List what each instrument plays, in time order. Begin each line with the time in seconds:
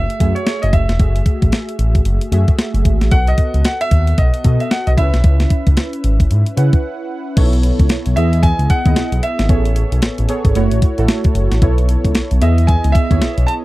Already playing: synth keys A3 F#4 G#4 E5, grand piano E5
0.10 closed hi-hat
0.20 analog synth bass F#2, synth keys A3 F#4 G#4 E5, kick, closed hi-hat
0.35 grand piano C#5, closed hi-hat
0.46 grand piano C#5, snare, closed hi-hat
0.62 analog synth bass F#1, grand piano D#5, closed hi-hat
0.73 analog synth bass F#1, grand piano E5, kick, closed hi-hat
0.89 analog synth bass E1, snare, closed hi-hat
0.99 analog synth bass F#1, synth keys A3 F#4 G#4 E5, kick, closed hi-hat
1.16 closed hi-hat
1.26 kick, closed hi-hat
1.42 analog synth bass A1, kick, closed hi-hat
1.52 snare, closed hi-hat
1.69 closed hi-hat
1.79 analog synth bass A1, closed hi-hat
1.95 kick, closed hi-hat
2.05 analog synth bass F#1, closed hi-hat
2.21 closed hi-hat
2.32 analog synth bass F#2, synth keys A3 F#4 G#4 E5, closed hi-hat
2.48 kick, closed hi-hat
2.59 snare, closed hi-hat
2.74 analog synth bass F#1, closed hi-hat
2.85 analog synth bass G#1, kick, closed hi-hat
3.01 analog synth bass A1, snare, closed hi-hat
3.11 analog synth bass B1, synth keys B3 F#4 A4 F#5, grand piano F#5, kick, closed hi-hat
3.27 grand piano D#5, closed hi-hat
3.38 kick, closed hi-hat
3.54 analog synth bass C#2, closed hi-hat
3.65 grand piano F#5, snare, closed hi-hat
3.81 grand piano E5, closed hi-hat
3.91 analog synth bass D#2, kick, closed hi-hat
4.07 closed hi-hat
4.18 analog synth bass B1, grand piano D#5, kick, closed hi-hat
4.34 closed hi-hat
4.44 analog synth bass B2, synth keys B3 F#4 A4 D#5, kick, closed hi-hat
4.60 grand piano E5, closed hi-hat
4.71 grand piano F#5, snare, closed hi-hat
4.87 analog synth bass B1, grand piano D#5, closed hi-hat
4.97 analog synth bass C#2, synth keys C#4 E4 B4 E5, grand piano E5, kick, closed hi-hat
5.14 analog synth bass B1, snare, closed hi-hat
5.24 analog synth bass C#2, kick, closed hi-hat
5.40 snare, closed hi-hat
5.50 kick, closed hi-hat
5.67 analog synth bass C#2, kick, closed hi-hat
5.77 snare, closed hi-hat
5.93 closed hi-hat
6.04 analog synth bass G#1, closed hi-hat
6.20 kick, closed hi-hat
6.31 analog synth bass G#2, closed hi-hat
6.46 closed hi-hat
6.57 analog synth bass C#3, synth keys C#4 E4 B4 F#5, closed hi-hat
6.73 kick, closed hi-hat
7.36 analog synth bass B1, synth keys B3 D#4 A4 C#5, kick, closed hi-hat, crash
7.43 synth keys E4
7.53 closed hi-hat
7.63 closed hi-hat
7.79 analog synth bass C#2, kick, closed hi-hat
7.89 analog synth bass B1, snare, closed hi-hat
8.06 analog synth bass B1, closed hi-hat
8.16 analog synth bass E2, synth keys B3 E4 G#4 D#5, grand piano E5, closed hi-hat
8.33 closed hi-hat
8.43 grand piano G#5, kick, closed hi-hat
8.59 analog synth bass C#2, closed hi-hat
8.70 grand piano F#5, kick, closed hi-hat
8.85 analog synth bass D#2, synth keys B3 E4 G#4 D#5, kick, closed hi-hat
8.96 analog synth bass B1, snare, closed hi-hat
9.12 analog synth bass B1, closed hi-hat
9.23 grand piano E5, closed hi-hat
9.39 analog synth bass G#1, snare, closed hi-hat
9.49 analog synth bass A1, synth keys B3 G#4 A4 C#5, kick, closed hi-hat
9.65 closed hi-hat
9.76 closed hi-hat
9.92 analog synth bass B1, closed hi-hat
10.02 analog synth bass A1, snare, closed hi-hat
10.18 analog synth bass A1, closed hi-hat
10.29 synth keys B3 G#4 A4 C#5, closed hi-hat
10.45 analog synth bass G#1, kick, closed hi-hat
10.55 analog synth bass F#1, synth keys A3 E4 F#4 C#5, closed hi-hat
10.71 analog synth bass A1, closed hi-hat
10.82 kick, closed hi-hat
10.98 analog synth bass A1, synth keys A3 E4 F#4 A4, closed hi-hat
11.08 snare, closed hi-hat
11.24 kick, closed hi-hat
11.35 analog synth bass F#1, closed hi-hat
11.52 analog synth bass A1, snare, closed hi-hat
11.62 analog synth bass B1, synth keys B3 E4 A4 C#5, kick, closed hi-hat
11.78 closed hi-hat
11.89 closed hi-hat
12.05 analog synth bass C#2, kick, closed hi-hat
12.15 analog synth bass B1, snare, closed hi-hat
12.31 analog synth bass B1, closed hi-hat
12.41 analog synth bass E2, synth keys B3 E4 G#4 D#5, grand piano E5, closed hi-hat
12.58 closed hi-hat
12.67 grand piano G#5, kick, closed hi-hat
12.84 analog synth bass C#2, closed hi-hat
12.92 grand piano E5, kick, closed hi-hat
13.10 analog synth bass D#2, synth keys B3 E4 G#4 C#5, kick, closed hi-hat
13.22 analog synth bass B1, snare, closed hi-hat
13.38 analog synth bass B1, closed hi-hat
13.47 grand piano A5, closed hi-hat